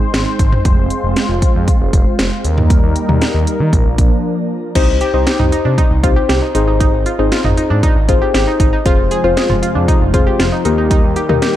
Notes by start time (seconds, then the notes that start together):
Already playing: G#3 C4 D#4 C5
0.14 G#1, snare, closed hi-hat
0.39 G#1, kick, closed hi-hat
0.52 mid tom
0.65 F1 G#3 F4, kick, closed hi-hat
0.78 F1
0.90 closed hi-hat
1.04 F1
1.16 snare, closed hi-hat
1.29 F1
1.42 kick, closed hi-hat
1.55 F2
1.68 kick, closed hi-hat
1.81 F1
1.93 F1, kick, closed hi-hat
2.19 F1, snare, closed hi-hat
2.44 D#2 G3 A#3 D#4 A#4, closed hi-hat
2.58 mid tom
2.70 kick, closed hi-hat
2.83 D#2
2.96 closed hi-hat
3.09 D#2, mid tom
3.21 snare, closed hi-hat
3.34 D#2
3.47 closed hi-hat
3.60 D#3
3.73 A#1 F3 A#3 D4, kick, closed hi-hat
3.86 A#1
3.98 A#1, kick, closed hi-hat
4.75 C2 C4 D#4 G4 C5, kick, closed hi-hat, crash
4.88 C2
5.01 G4, closed hi-hat
5.14 C2 C4 D#4 G4 C5
5.27 G4, snare, closed hi-hat
5.39 C2 D#4, mid tom
5.52 D#4, closed hi-hat
5.65 C3 D4
5.78 D#4, kick, closed hi-hat
5.91 C2
6.03 C2 C4 D#4 F4 G4 C5, kick, closed hi-hat
6.16 G4
6.29 C2 G4, snare, closed hi-hat
6.42 D#4
6.55 G#1 C4 D#4 G#4 C5, closed hi-hat
6.68 D#4
6.80 D#4, kick, closed hi-hat
6.93 G#1
7.06 F4, closed hi-hat
7.19 G#1 C4 D#4 G#4 C5
7.32 F4, snare, closed hi-hat
7.44 G#1 D#4, mid tom
7.57 D#4, closed hi-hat
7.70 G#2 D4
7.83 D#4, kick, closed hi-hat
7.96 G#1
8.09 G#1 C4 D#4 F4 G#4 C5, kick, closed hi-hat
8.22 G4
8.34 G#1 G4, snare, closed hi-hat
8.47 D#4
8.60 G#1 D#4, kick, closed hi-hat
8.73 D#4
8.86 F1 C3 F3 G#3 C4 F4 G#4 C5, kick, closed hi-hat
8.98 F1
9.11 G#4, closed hi-hat
9.24 F1 C4 F4 G#4 C5
9.37 G#4, snare, closed hi-hat
9.50 F1 F4, mid tom
9.63 F4, closed hi-hat
9.75 F2 D4
9.88 D#4, kick, closed hi-hat
10.01 F1
10.14 F1 C4 F4 G#4 C5, kick, closed hi-hat
10.27 G4
10.39 F1 F4, snare, closed hi-hat
10.52 D#4
10.65 D#2 D#3 G3 A#3 D#4 G4 A#4, closed hi-hat
10.78 D#4
10.91 D#4, kick, closed hi-hat
11.04 D#2
11.16 G4, closed hi-hat
11.29 D#2 A#3 D#4 G4 A#4, mid tom
11.42 G4, snare, closed hi-hat